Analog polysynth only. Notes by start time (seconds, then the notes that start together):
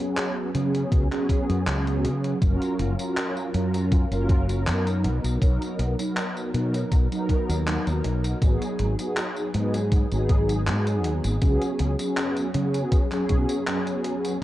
0.00 F#3 B3 C#4 G#4
0.53 F#3 B3 C#4 G#4
1.11 F#3 B3 C#4 G#4
1.66 F#3 B3 C#4 G#4
2.41 F#3 C#4 F4 A#4
2.98 F#3 C#4 F4 A#4
3.54 F#3 C#4 F4 A#4
4.11 F#3 C#4 F4 A#4
4.66 F#3 B3 D#4 A#4
5.41 F#3 B3 D#4 A#4
5.98 F#3 B3 D#4 A#4
6.53 F#3 B3 D#4 A#4
7.11 F#3 B3 D#4 A#4
7.66 F#3 B3 D#4 A#4
8.41 F#3 B3 D#4 G#4
8.98 F#3 B3 D#4 G#4
9.53 F#3 B3 D#4 G#4
10.11 F#3 B3 D#4 G#4
10.66 F#3 B3 D#4 G#4
11.41 F#3 B3 C#4 G#4
11.98 F#3 B3 C#4 G#4
12.54 F#3 B3 C#4 G#4
13.11 F#3 B3 C#4 G#4
13.66 F#3 B3 C#4 G#4